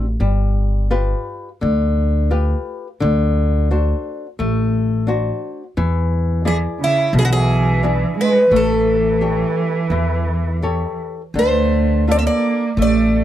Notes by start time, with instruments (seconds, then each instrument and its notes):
Already playing: upright bass A1
0.20 upright bass G1, nylon-string guitar G3
0.91 nylon-string guitar F4 G4 B4
1.61 upright bass D2, nylon-string guitar D3
2.31 nylon-string guitar F4 G4 B4
3.00 upright bass D2, nylon-string guitar D3
3.71 nylon-string guitar D4 F#4 C5
4.39 upright bass A1, nylon-string guitar A3
5.07 nylon-string guitar D4 F#4 C5
5.77 upright bass E2, nylon-string guitar E3
6.45 cello E3, nylon-string guitar E4 G#4 D5, twelve-string acoustic guitar G#4
6.80 cello C#3
6.84 twelve-string acoustic guitar E4
7.13 upright bass B1, nylon-string guitar B2, cello E3
7.19 cello D3, twelve-string acoustic guitar G#4
7.25 cello E3, twelve-string acoustic guitar F#4
7.33 twelve-string acoustic guitar G#4
7.83 nylon-string guitar D4 E4 G#4
8.18 cello G#3, twelve-string acoustic guitar B4
8.51 upright bass A1, cello E3, nylon-string guitar A3
8.56 twelve-string acoustic guitar A4
9.21 nylon-string guitar G4 A4 C#5
9.90 upright bass E2, nylon-string guitar E3
10.62 nylon-string guitar G4 A4 C#5
11.34 upright bass D2, nylon-string guitar D3, cello A3
11.39 twelve-string acoustic guitar C5
12.07 cello A3, nylon-string guitar D4 F4 A4
12.11 cello C4, twelve-string acoustic guitar D5
12.19 twelve-string acoustic guitar E5
12.23 cello A#3, twelve-string acoustic guitar D5
12.77 upright bass A1, cello A3, nylon-string guitar A3
12.82 twelve-string acoustic guitar D5